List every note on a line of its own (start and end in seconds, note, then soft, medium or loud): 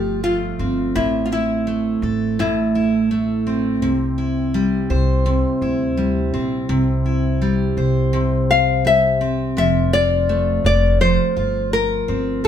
0.00 0.55 G1 medium
0.00 1.03 F3 medium
0.00 0.23 A3 medium
0.00 0.59 C4 soft
0.00 1.03 F4 soft
0.00 0.23 G4 medium
0.00 2.03 A4 soft
0.23 1.67 A3 soft
0.23 0.97 F4 medium
0.59 0.92 G1 medium
0.59 3.46 C4 soft
0.95 1.99 A1 medium
0.95 2.38 A2 medium
0.95 1.26 E4 medium
1.25 1.31 F4 medium
1.32 2.75 E4 soft
1.32 2.39 E4 medium
1.67 3.10 A3 medium
2.02 3.82 A1 medium
2.02 3.90 A4 soft
2.39 3.82 A2 medium
2.39 3.43 E4 medium
2.75 4.17 E4 soft
3.11 3.90 A3 medium
3.47 6.33 C4 medium
3.82 4.86 C2 medium
3.82 5.25 C3 medium
4.18 5.61 E4 soft
4.54 5.96 G3 medium
4.90 5.42 C2 medium
4.90 7.77 C5 medium
5.26 6.68 C3 medium
5.62 6.29 D2 medium
5.62 7.04 E4 soft
5.97 7.40 G3 medium
6.33 6.67 A#1 medium
6.33 9.20 C4 medium
6.69 7.73 C2 medium
6.69 8.12 C3 medium
7.06 8.49 E4 soft
7.42 8.83 G3 medium
7.77 9.53 C2 medium
7.77 11.28 C5 medium
8.13 9.65 C3 medium
8.51 8.86 F5 medium
8.85 9.65 G3 soft
8.85 9.57 E5 medium
9.21 12.08 C4 medium
9.57 10.61 F1 medium
9.57 11.00 F3 medium
9.57 9.91 E5 medium
9.93 11.35 F4 soft
9.93 10.65 D5 medium
10.29 12.48 A3 medium
10.64 11.16 F1 medium
10.64 11.01 D5 medium
11.01 12.48 F3 medium
11.01 11.73 C5 medium
11.37 12.05 G1 medium
11.37 12.48 F4 medium
11.73 12.41 A#4 medium
12.08 12.42 G1 medium
12.08 12.48 C4 soft
12.44 12.48 A1 medium
12.44 12.48 A2 medium